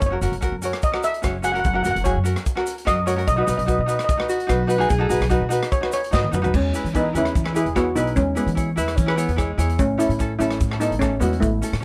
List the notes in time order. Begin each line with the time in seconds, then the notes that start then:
0.00 F#1 C#5, kick, closed hi-hat, shaker
0.06 C#5
0.10 C#4 F#4 A#4
0.21 F#1 C#4 F#4 A#4, closed hi-hat, shaker
0.32 F#1, closed hi-hat
0.41 C#4 F#4 A#4, kick, closed hi-hat, shaker
0.52 F#2
0.62 C#4 F#4 A#4 C#5, closed hi-hat, shaker
0.73 cross-stick, closed hi-hat, shaker
0.82 D#5, kick, closed hi-hat, shaker
0.92 C#4 F#4 A#4, cross-stick
1.03 E5, closed hi-hat, shaker
1.14 closed hi-hat
1.22 F#1 C#4 F#4 C#5, kick, cross-stick, closed hi-hat, shaker
1.42 C#4 F#4 G#4 F#5, closed hi-hat, shaker
1.52 C#4 F#4 A#4 F#5, closed hi-hat
1.59 F#5
1.64 F#1 F#5, kick, closed hi-hat, shaker
1.73 C#4 F#4 A#4 F#5
1.83 F#1 C#4 F#4 A#4 F#5, closed hi-hat, shaker
1.91 F#5
1.96 F#1, closed hi-hat
2.04 C#4 F#4 G#4 C#5, kick, closed hi-hat, shaker
2.16 F#2
2.24 C#4 F#4 A#4, closed hi-hat, shaker
2.36 cross-stick, closed hi-hat, shaker
2.46 kick, closed hi-hat, shaker
2.55 C#4 F#4 A#4, cross-stick
2.67 closed hi-hat, shaker
2.78 closed hi-hat
2.85 F#2 C#4 F#4 A#4 D#5, kick, cross-stick, closed hi-hat, shaker
3.06 C#4 F#4 A#4 C#5, closed hi-hat, shaker
3.16 C#4 F#4 A#4, closed hi-hat
3.27 B1 D#5, kick, closed hi-hat, shaker
3.36 D#4 F#4 B4 D#5
3.43 D#4 D#5
3.47 B1 F#4 B4 D#5, closed hi-hat, shaker
3.57 B1 D#5, closed hi-hat
3.65 D#4 F#4 B4 D#5, kick, closed hi-hat, shaker
3.72 D#5
3.79 B2 D#5
3.86 D#4 F#4 B4 D#5, closed hi-hat, shaker
3.96 D#5, cross-stick, closed hi-hat
4.00 shaker
4.04 D#5
4.09 D#5, kick, closed hi-hat, shaker
4.17 D#4 F#4 B4, cross-stick
4.29 F#4, closed hi-hat, shaker
4.40 closed hi-hat
4.47 B1 D#4 F#4 B4, kick, cross-stick, closed hi-hat, shaker
4.67 D#4 F#4 B4, closed hi-hat, shaker
4.78 D#4 F#4 G#4, closed hi-hat
4.90 B1 G#4, kick, closed hi-hat, shaker
4.98 D#4 F#4 A4
5.09 B1 D#4 F#4 B4, closed hi-hat, shaker
5.20 B1, cross-stick, closed hi-hat, shaker
5.29 D#4 F#4 B4, kick, closed hi-hat, shaker
5.41 B2
5.49 D#4 F#4 B4, closed hi-hat, shaker
5.63 cross-stick, closed hi-hat
5.72 C#5, kick, closed hi-hat, shaker
5.81 D#4 F#4 B4, cross-stick
5.92 C#5, closed hi-hat, shaker
6.03 closed hi-hat, shaker
6.11 G#2 D#4 F#4 B4 D#5, kick, snare, shaker
6.24 high tom
6.31 F#2 D#4 F#4 B4, mid tom, shaker
6.42 D#4 F#4 B4, floor tom, shaker
6.54 E2 G#3 C#4, kick, crash, shaker
6.73 E4 G#4 B4, closed hi-hat, shaker
6.85 E3, closed hi-hat, shaker
6.93 B3 D#4 E4 G#4 B4, kick, closed hi-hat, shaker
7.13 E2 C#4 E4 G#4 B4, closed hi-hat, shaker
7.18 E4
7.25 cross-stick, closed hi-hat
7.35 E3, kick, closed hi-hat, shaker
7.44 E4 G#4 B4, cross-stick
7.54 E4 G#4 B4, closed hi-hat, shaker
7.66 E2, closed hi-hat
7.75 B3 E4 F#4 G#4 C#5, kick, cross-stick, closed hi-hat, shaker
7.95 B1 B3 D#4 E4 G#4 B4, closed hi-hat, shaker
8.07 closed hi-hat
8.16 E2 G#3 C#4, kick, closed hi-hat, shaker
8.35 G#3 B3 E4 G#4 B4, closed hi-hat, shaker
8.47 E3, closed hi-hat, shaker
8.55 E4 G#4 C#5, kick, closed hi-hat, shaker
8.76 E2 E4 G#4 B4, closed hi-hat, shaker
8.88 cross-stick, closed hi-hat
8.96 E3 C#4, kick, closed hi-hat, shaker
9.06 E4 G#4 B4, cross-stick
9.16 B3 E4 G#4 C#5, closed hi-hat, shaker
9.28 E2, closed hi-hat
9.36 G#3 E4 G#4 C#5, kick, cross-stick, closed hi-hat, shaker
9.58 E2 E4 G#4 C#5, closed hi-hat, shaker
9.69 closed hi-hat
9.79 A1 A3 C#4, kick, closed hi-hat, shaker
9.98 C#4 E4 A4, closed hi-hat, shaker
10.09 A2, closed hi-hat, shaker
10.19 C#4 E4 A4, kick, closed hi-hat, shaker
10.39 A1 C#4 E4 A4, closed hi-hat, shaker
10.51 cross-stick, closed hi-hat
10.61 A2, kick, closed hi-hat, shaker
10.71 C#4 E4 A4, cross-stick
10.80 B3 C#4 D#4 E4 A4, closed hi-hat, shaker
10.91 A1, closed hi-hat
10.99 A3 C#4 E4 A4, kick, cross-stick, closed hi-hat, shaker
11.20 E2 G#3 B3 C#4 E4 F#4, closed hi-hat, shaker
11.33 closed hi-hat
11.40 A1 A3 E4, kick, closed hi-hat, shaker
11.62 C#4 E4 A4, closed hi-hat, shaker
11.73 A2, cross-stick, closed hi-hat, shaker
11.80 C#4